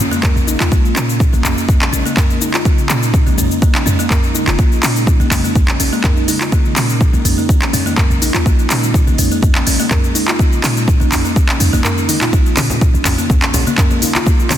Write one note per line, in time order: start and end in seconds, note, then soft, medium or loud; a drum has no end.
0.00 12.29 C#3 medium
0.00 4.55 G#3 medium
0.00 4.54 A#3 medium
0.00 0.68 F4 medium
0.11 0.22 A#3 medium
0.11 cabasa soft
0.23 0.35 A#4 medium
0.23 kick loud
0.23 clap medium
0.23 mid tom medium
0.23 cabasa medium
0.36 0.56 A#1 medium
0.36 cabasa soft
0.47 0.59 D#4 medium
0.47 cabasa medium
0.60 0.70 D#2 medium
0.60 0.66 F4 medium
0.60 clap medium
0.60 cabasa soft
0.71 0.92 A#1 medium
0.71 0.83 A#3 medium
0.71 12.29 D#4 medium
0.71 kick loud
0.71 cabasa medium
0.85 cabasa soft
0.96 1.30 A#2 medium
0.96 1.03 C#4 medium
0.96 clap medium
0.96 cabasa medium
1.09 cabasa soft
1.20 kick loud
1.20 cabasa medium
1.33 1.43 A#1 medium
1.33 1.43 A#3 medium
1.33 cabasa soft
1.44 1.55 A#1 medium
1.44 1.56 C#4 medium
1.44 clap medium
1.44 mid tom medium
1.44 cabasa loud
1.58 cabasa soft
1.69 1.89 A#1 loud
1.69 1.81 A#3 medium
1.69 kick loud
1.69 mid tom medium
1.69 cabasa soft
1.82 1.88 C#4 medium
1.82 clap medium
1.82 cabasa soft
1.93 2.03 A#1 medium
1.93 2.00 C#4 loud
1.93 cabasa medium
2.06 2.16 A#3 loud
2.06 cabasa soft
2.17 2.29 A#4 medium
2.17 kick loud
2.17 clap medium
2.17 mid tom medium
2.17 cabasa medium
2.30 cabasa soft
2.41 2.53 D#4 medium
2.41 cabasa loud
2.54 2.60 F4 medium
2.54 clap medium
2.54 cabasa soft
2.65 2.77 A#3 medium
2.65 kick loud
2.65 cabasa medium
2.78 cabasa soft
2.89 3.23 A#2 medium
2.89 2.96 C#4 medium
2.89 clap medium
2.89 cabasa medium
3.03 cabasa soft
3.14 kick loud
3.14 cabasa soft
3.27 3.36 A#1 medium
3.27 3.37 A#3 medium
3.27 cabasa soft
3.38 3.49 A#1 medium
3.38 3.49 C#4 medium
3.38 mid tom medium
3.38 cabasa medium
3.51 cabasa soft
3.62 3.74 A#3 medium
3.62 kick loud
3.62 cabasa medium
3.75 3.81 C#4 medium
3.75 clap medium
3.75 cabasa soft
3.86 3.97 F2 medium
3.86 3.93 C#4 loud
3.86 mid tom medium
3.86 cabasa medium
3.99 4.09 A#3 loud
3.99 cabasa soft
4.10 4.23 A#4 medium
4.10 kick loud
4.10 clap medium
4.10 mid tom medium
4.10 cabasa medium
4.24 cabasa soft
4.35 4.46 D#4 medium
4.35 cabasa medium
4.47 4.57 F1 loud
4.47 4.54 F4 medium
4.47 clap medium
4.47 cabasa soft
4.59 4.79 A#1 loud
4.59 12.29 D#3 medium
4.59 12.29 G#3 medium
4.59 4.70 A#3 medium
4.59 kick loud
4.59 cabasa soft
4.72 cabasa soft
4.83 5.17 A#2 medium
4.83 4.90 C#4 loud
4.83 clap medium
4.83 open hi-hat medium
4.83 cabasa medium
4.96 cabasa soft
5.07 kick loud
5.07 cabasa soft
5.20 5.30 A#1 medium
5.20 5.30 A#3 medium
5.20 cabasa soft
5.31 5.42 A#1 medium
5.31 5.43 C#4 medium
5.31 clap medium
5.31 mid tom medium
5.31 open hi-hat medium
5.31 cabasa medium
5.44 5.55 A#3 medium
5.44 cabasa soft
5.55 5.76 A#1 loud
5.55 kick loud
5.55 mid tom medium
5.55 cabasa soft
5.68 5.75 C#4 medium
5.68 clap medium
5.68 cabasa soft
5.80 5.90 A#1 medium
5.80 5.87 C#4 loud
5.80 open hi-hat medium
5.80 cabasa medium
5.93 6.03 A#3 loud
5.93 cabasa soft
6.04 6.16 A#4 medium
6.04 kick loud
6.04 clap medium
6.04 mid tom medium
6.04 cabasa medium
6.17 cabasa soft
6.28 6.40 D#4 medium
6.28 open hi-hat medium
6.28 cabasa medium
6.41 6.47 F4 medium
6.41 clap medium
6.41 cabasa soft
6.52 6.64 A#3 medium
6.52 kick loud
6.52 cabasa soft
6.65 cabasa soft
6.76 7.10 A#2 medium
6.76 6.83 C#4 loud
6.76 clap medium
6.76 open hi-hat medium
6.76 cabasa medium
6.89 cabasa soft
7.01 kick loud
7.01 cabasa soft
7.13 7.23 A#1 medium
7.13 7.24 A#3 medium
7.13 cabasa soft
7.25 7.36 A#1 medium
7.25 7.37 C#4 medium
7.25 mid tom medium
7.25 open hi-hat medium
7.25 cabasa medium
7.38 7.49 A#3 medium
7.38 cabasa soft
7.49 kick loud
7.49 cabasa soft
7.62 7.68 C#4 medium
7.62 clap medium
7.62 cabasa soft
7.73 7.84 F2 medium
7.73 7.80 C#4 loud
7.73 mid tom medium
7.73 open hi-hat medium
7.73 cabasa medium
7.86 7.96 A#3 loud
7.86 cabasa soft
7.97 8.10 A#4 medium
7.97 kick loud
7.97 clap medium
7.97 mid tom medium
7.97 cabasa soft
8.10 8.30 A#1 medium
8.10 cabasa soft
8.22 8.33 D#4 medium
8.22 open hi-hat medium
8.22 cabasa medium
8.34 8.44 D#2 medium
8.34 8.41 F4 medium
8.34 clap medium
8.34 cabasa soft
8.46 8.66 A#1 loud
8.46 8.57 A#3 medium
8.46 kick loud
8.46 cabasa medium
8.59 cabasa soft
8.70 9.04 A#2 medium
8.70 8.77 C#4 loud
8.70 clap medium
8.70 open hi-hat medium
8.70 cabasa medium
8.83 cabasa soft
8.94 kick loud
8.94 cabasa soft
9.07 9.17 A#1 medium
9.07 9.18 A#3 medium
9.07 cabasa soft
9.18 9.29 A#1 medium
9.18 9.30 C#4 medium
9.18 mid tom medium
9.18 open hi-hat medium
9.18 cabasa medium
9.31 9.42 A#3 medium
9.31 cabasa soft
9.43 9.63 A#1 loud
9.43 kick loud
9.43 mid tom medium
9.43 cabasa soft
9.55 9.62 C#4 medium
9.55 clap medium
9.55 cabasa soft
9.67 9.78 A#1 medium
9.67 9.74 C#4 loud
9.67 open hi-hat medium
9.67 cabasa medium
9.80 9.90 A#3 loud
9.80 cabasa soft
9.91 10.03 A#4 medium
9.91 kick loud
9.91 clap medium
9.91 mid tom loud
9.91 cabasa soft
10.04 cabasa soft
10.15 10.27 D#4 medium
10.15 open hi-hat medium
10.15 cabasa medium
10.28 10.34 F4 medium
10.28 clap medium
10.28 cabasa soft
10.39 10.51 A#3 medium
10.39 kick loud
10.39 cabasa medium
10.53 cabasa soft
10.63 10.97 A#2 medium
10.63 10.70 C#4 medium
10.63 clap medium
10.63 open hi-hat medium
10.63 cabasa medium
10.77 cabasa soft
10.88 kick loud
10.88 cabasa medium
11.00 11.10 A#1 loud
11.00 11.11 A#3 medium
11.00 cabasa soft
11.12 11.23 A#1 medium
11.12 11.23 C#4 medium
11.12 clap medium
11.12 mid tom medium
11.12 open hi-hat medium
11.12 cabasa medium
11.25 11.36 A#3 medium
11.25 cabasa soft
11.36 kick loud
11.36 cabasa soft
11.49 11.55 C#4 medium
11.49 clap medium
11.49 cabasa soft
11.60 11.71 D#2 medium
11.60 11.67 C#4 loud
11.60 mid tom medium
11.60 open hi-hat medium
11.60 cabasa medium
11.73 11.83 A#1 loud
11.73 11.83 A#3 loud
11.73 cabasa soft
11.84 11.96 A#4 medium
11.84 clap medium
11.84 mid tom medium
11.84 cabasa medium
11.98 cabasa soft
12.09 12.20 D#4 medium
12.09 open hi-hat medium
12.09 high tom medium
12.09 cabasa medium
12.21 12.28 F4 medium
12.21 clap medium
12.21 mid tom medium
12.21 cabasa soft
12.33 12.54 A#1 loud
12.33 14.57 C#3 medium
12.33 14.57 G#3 medium
12.33 14.57 A#3 medium
12.33 12.44 A#3 medium
12.33 14.57 F4 medium
12.33 kick loud
12.33 muted conga soft
12.33 cabasa medium
12.46 cabasa soft
12.57 12.91 A#2 medium
12.57 12.64 C#4 medium
12.57 clap loud
12.57 open hi-hat medium
12.57 high conga loud
12.57 cabasa medium
12.70 muted conga soft
12.70 low conga loud
12.70 cabasa soft
12.81 kick loud
12.81 cabasa soft
12.94 13.04 A#1 loud
12.94 cabasa soft
13.05 13.16 A#1 medium
13.05 13.17 C#4 medium
13.05 clap medium
13.05 mid tom medium
13.05 open hi-hat medium
13.05 muted conga medium
13.05 low conga medium
13.05 cabasa loud
13.18 13.29 A#3 medium
13.18 cabasa soft
13.30 13.50 A#1 loud
13.30 kick loud
13.30 mid tom medium
13.30 low conga medium
13.30 cabasa medium
13.42 13.49 C#4 medium
13.42 clap loud
13.42 cabasa soft
13.54 13.65 A#1 medium
13.54 13.61 C#4 loud
13.54 open hi-hat medium
13.54 muted conga soft
13.54 low conga loud
13.54 cabasa medium
13.67 13.77 A#3 loud
13.67 high conga medium
13.67 cabasa soft
13.78 13.90 A#4 medium
13.78 kick loud
13.78 clap medium
13.78 mid tom medium
13.78 cabasa medium
13.91 14.01 A#3 medium
13.91 muted conga medium
13.91 cabasa soft
14.02 14.14 D#4 medium
14.02 open hi-hat medium
14.02 high conga medium
14.02 cabasa medium
14.15 14.21 F4 medium
14.15 clap medium
14.15 high conga medium
14.15 cabasa soft
14.26 14.38 A#3 medium
14.26 kick loud
14.26 muted conga soft
14.26 cabasa medium
14.40 cabasa soft
14.50 14.57 A#2 medium
14.50 14.57 C#4 loud
14.50 clap medium
14.50 open hi-hat medium
14.50 high conga loud
14.50 cabasa medium